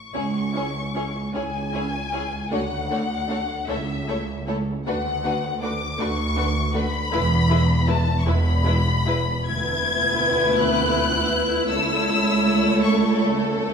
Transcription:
Already playing: violin section C#6
0.14 cello section C#2, double bass section C#2, viola section C#4 E4, violin section G#4 C#5
0.54 viola section C#4 E4, violin section G#4 C#5
0.95 viola section C#4 E4, violin section G#4 C#5
1.34 cello section C#2, double bass section C#2, viola section C#4 E4, violin section G#4 C#5 G#5
1.73 viola section C#4 E4, violin section G#4 C#5
2.13 viola section C#4 E4, violin section G#4 C#5
2.51 cello section D2, double bass section D2, viola section A3 D4, violin section F#4 C#5 F#5
2.90 viola section A3 D4, violin section F#4 C#5
3.29 viola section A3 D4, violin section F#4 C#5
3.68 double bass section C#2, cello section C#2, viola section A3 E4, violin section A4 C#5 E5
4.08 viola section A3 E4, violin section A4 C#5
4.47 viola section A3 E4, violin section A4 C#5
4.85 double bass section D2, cello section D2, viola section A3 D4, violin section F#4 B4 F#5
5.25 viola section A3 D4, violin section F#4 B4
5.62 viola section A3 D4, violin section F#4 B4 D6
5.99 double bass section D2, cello section D2, viola section A3 D4, violin section F#4 B4 C#6
6.36 viola section A3 D4, violin section F#4 B4
6.74 viola section A3 D4, violin section F#4 B4 B5
7.12 double bass section E1, cello section E2, viola section G#3 E4, violin section E4 B4
7.50 viola section G#3 E4, violin section E4 B4
7.87 viola section G#3 E4, violin section E4 B4 A5
8.19 violin section C#6
8.25 double bass section E1, cello section E2, viola section G#3 E4, violin section E4 B4 B5
8.65 viola section G#3 E4, violin section E4 B4
9.06 viola section G#3 E4, violin section E4 B4
9.45 double bass section D2, cello section D2, viola section B3 E4, violin section E4 B4 G#6
10.57 violin section F#6
11.69 double bass section C#2, cello section C#2, viola section A3, violin section A4 C#5 E6
12.82 violin section C#6

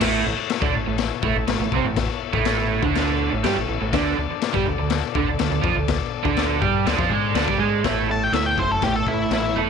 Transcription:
0.01 fingered electric bass A1, overdriven electric guitar A2 A3, transistor combo organ E4 A4 C#5, kick, snare, crash
0.26 fingered electric bass A1, overdriven electric guitar A2
0.38 muted fingered electric bass stroke, muted overdriven electric guitar stroke
0.50 snare, crash
0.61 fingered electric bass D2, overdriven electric guitar D3 D4, kick
0.74 fingered electric bass A1, overdriven electric guitar A2
0.87 fingered electric bass A1, overdriven electric guitar A2
0.98 snare, crash
1.23 fingered electric bass A1, overdriven electric guitar A2 A3, kick
1.35 fingered electric bass A1, overdriven electric guitar A2
1.47 fingered electric bass A1, overdriven electric guitar A2, snare, crash
1.59 fingered electric bass A1, overdriven electric guitar A2
1.72 fingered electric bass C2, overdriven electric guitar C3 C4, kick
1.84 fingered electric bass A1, overdriven electric guitar A2
1.96 kick, snare, crash
2.33 fingered electric bass A1, overdriven electric guitar A2 A3, kick
2.45 snare, crash
2.82 fingered electric bass D2, overdriven electric guitar D3 D4, kick
2.95 snare, crash
3.32 fingered electric bass A1, overdriven electric guitar A2
3.43 fingered electric bass G2, overdriven electric guitar G3 G4, snare, crash
3.57 fingered electric bass A1, overdriven electric guitar A2
3.68 fingered electric bass A1, overdriven electric guitar A2
3.81 fingered electric bass A1, overdriven electric guitar A2
3.93 fingered electric bass D2, overdriven electric guitar D3 D4, transistor combo organ D4 A4 D5, kick, snare, crash
4.17 fingered electric bass D2, overdriven electric guitar D3
4.30 muted fingered electric bass stroke, muted overdriven electric guitar stroke
4.42 snare, crash
4.53 fingered electric bass G2, overdriven electric guitar G3 G4, kick
4.66 fingered electric bass D2, overdriven electric guitar D3
4.79 fingered electric bass D2, overdriven electric guitar D3
4.90 snare, crash
5.15 fingered electric bass D2, overdriven electric guitar D3 D4, kick
5.28 fingered electric bass D2, overdriven electric guitar D3
5.39 fingered electric bass D2, overdriven electric guitar D3, snare, crash
5.51 fingered electric bass D2, overdriven electric guitar D3
5.62 fingered electric bass F2, overdriven electric guitar F3 F4, kick
5.75 fingered electric bass D2, overdriven electric guitar D3
5.88 kick, snare, crash
6.23 fingered electric bass D2, overdriven electric guitar D3 D4, kick
6.37 snare, crash
6.60 fingered electric bass G2, overdriven electric guitar G3 G4, kick
6.86 fingered electric bass D2, overdriven electric guitar D3 D4, snare, crash
6.97 fingered electric bass F2, overdriven electric guitar F3 F4, kick
7.09 fingered electric bass G#2, overdriven electric guitar G#3 G#4
7.34 fingered electric bass D2, overdriven electric guitar D3 D4, snare, crash
7.46 fingered electric bass G2, overdriven electric guitar G3 G4, kick
7.58 fingered electric bass G#2, overdriven electric guitar G#3 G#4
7.81 fingered electric bass A1, overdriven electric guitar A3 E4, transistor combo organ E4 A4 C#5, kick, snare, crash
7.86 overdriven electric guitar A4
8.09 overdriven electric guitar A3 E4, lead electric guitar A5
8.23 lead electric guitar G5
8.32 fingered electric bass D2, overdriven electric guitar A3 E4, lead electric guitar E5, snare, crash
8.46 lead electric guitar G5
8.57 fingered electric bass F#1, overdriven electric guitar A3 E4, lead electric guitar C5, kick
8.71 lead electric guitar A4
8.82 fingered electric bass A1, overdriven electric guitar A3 E4, lead electric guitar G4, kick, snare, crash
8.96 lead electric guitar A4
9.06 fingered electric bass A1, overdriven electric guitar A3 E4, lead electric guitar E4, kick
9.31 fingered electric bass A1, overdriven electric guitar A3 E4, lead electric guitar E4, snare, crash
9.56 fingered electric bass E1, overdriven electric guitar A3 E4 A4

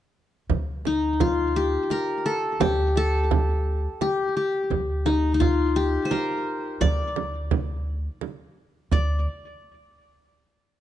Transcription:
0.50 upright bass D2, frame drum
0.85 qanun D#4, frame drum
1.20 qanun F4, frame drum
1.56 qanun G4
1.90 qanun A#4, frame drum
2.26 qanun A4
2.60 upright bass D2, qanun G4, frame drum
2.96 qanun A4, frame drum
3.31 frame drum
4.01 qanun G4, frame drum
4.37 qanun G4
4.70 upright bass D2, frame drum
5.06 qanun D#4, frame drum
5.34 qanun D#4
5.40 qanun F4, frame drum
5.76 qanun G4
6.05 qanun C5
6.11 qanun A#4, frame drum
6.81 upright bass D2, qanun D5, frame drum
7.16 frame drum
7.51 frame drum
8.21 frame drum
8.92 upright bass D2, qanun D5, frame drum

